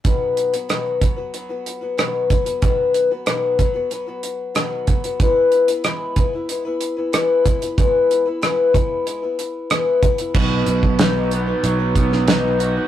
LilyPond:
<<
  \new Staff \with { instrumentName = "Overdriven electric guitar" } { \time 4/4 \key b \mixolydian \tempo 4 = 93 r1 | r1 | r1 | r1 |
b,4 dis'8 b8 fis8 b8 dis'8 fis'8 | }
  \new Staff \with { instrumentName = "Steel-string acoustic guitar" } { \time 4/4 \key b \mixolydian <b, dis fis b fis' b'>8. <fis b fis' b'>16 <b, dis fis b fis' b'>8 <fis b fis' b'>16 <fis b fis' b'>16 <fis b fis' b'>16 <fis b fis' b'>8 <fis b fis' b'>16 <b, dis fis b fis' b'>8 <fis b fis' b'>16 <fis b fis' b'>16 | <b, dis fis b fis' b'>8. <fis b fis' b'>16 <b, dis fis b fis' b'>8 <fis b fis' b'>16 <fis b fis' b'>16 <fis b fis' b'>16 <fis b fis' b'>8. <b, dis fis b fis' b'>8 <fis b fis' b'>16 <fis b fis' b'>16 | <e gis b e' b'>8. <b e' b'>16 <e gis b e' b'>8 <gis b e' b'>16 <b e' b'>16 <gis b e' b'>16 <b e' b'>8 <b e' b'>16 <e gis b e' b'>8 <gis b e' b'>16 <b e' b'>16 | <e gis b e' b'>8. <b e' b'>16 <e gis b e' b'>8 <gis b e' b'>8 <gis b e' b'>16 <b e' b'>8. <e gis b e' b'>8 <gis b e' b'>16 <b e' b'>16 |
<b, dis fis b dis' b'>8 <fis b dis' b'>8 <b, dis fis b dis' b'>8 <fis b dis' b'>16 <fis b dis' b'>8 <fis b dis' b'>8 <fis b dis' b'>16 <b, dis fis b dis' b'>8 <fis b dis' b'>16 <fis b dis' b'>16 | }
  \new Staff \with { instrumentName = "Fingered electric bass" } { \clef bass \time 4/4 \key b \mixolydian r1 | r1 | r1 | r1 |
b,,8 b,,4. b,,2 | }
  \new DrumStaff \with { instrumentName = "Drums" } \drummode { \time 4/4 <hh bd>8 hh16 hh16 <hh ss>8 <hh bd>8 hh8 hh8 <hh ss>8 <hh bd>16 hh16 | <hh bd>8 hh8 <hh ss>8 <hh bd>8 hh8 hh8 <hh ss>8 <hh bd>16 hh16 | <hh bd>8 hh16 hh16 <hh ss>8 <hh bd>8 hh8 hh8 <hh ss>8 <hh bd>16 hh16 | <hh bd>8 hh8 <hh ss>8 <hh bd>8 hh8 hh8 <hh ss>8 <hh bd>16 hh16 |
<cymc bd>8 hh16 bd16 <hh sn>8 hh8 hh8 <hh bd>16 sn16 <hh sn>8 hh8 | }
>>